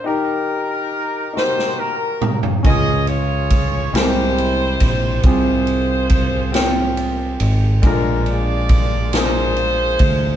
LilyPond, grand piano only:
\new Staff \with { instrumentName = "Grand piano" } { \time 6/8 \key f \minor \tempo 4. = 46 <ees ees' g' bes'>4. <ees' ges' g' bes'>4. | <des des' f' aes'>4. <c aes c' e' g' aes' bes'>4. | <c c' f' aes'>4. <c' f' g''>4. | <bes, aes bes d' f' a' bes'>4. <aes bes d' f' aes' bes'>4. | }